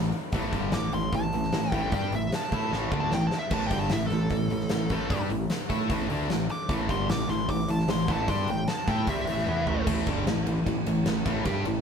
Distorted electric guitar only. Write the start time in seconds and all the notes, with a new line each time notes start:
Already playing: E3
0.34 A2 E3 A3
0.53 G2 D3 G3
0.73 A2 E3
0.92 A2 E3
1.13 A2 E3
1.34 A2 E3
1.53 A2 E3
1.73 A2 E3 A3
1.93 G3 D4 G4
2.13 A2 E3
2.52 A3 E4 A4
2.72 A2 E3 A3
2.92 D3 A3 D4
3.12 A2 E3
3.51 A2 E3 A3
3.70 G2 D3 G3
3.91 A2 E3
4.10 A2 E3
4.30 A2 E3
4.51 A2 E3
4.70 A2 E3
4.90 A2 E3 A3
5.09 G3 D4 G4
5.29 A2 E3
5.69 A3 E4 A4
5.88 A2 E3 A3
6.08 D3 A3 D4
6.29 A2 E3
6.69 A2 E3 A3
6.88 G2 D3 G3
7.09 A2 E3
7.30 A2 E3
7.49 A2 E3
7.68 A2 E3
7.88 A2 E3
8.09 A2 E3 A3
8.29 G3 D4 G4
8.49 A2 E3
8.88 A3 E4 A4
9.08 C3 G3 C4
9.28 A2 E3 A3
9.48 E3 B3 E4
9.68 A2 E3 A3
9.88 A2 E3 A3
10.08 G2 D3 G3
10.27 A2 E3
10.46 A2 E3
10.66 A2 E3
10.87 A2 E3
11.06 A2 E3
11.25 A2 E3 A3
11.45 G3 D4 G4
11.65 A2 E3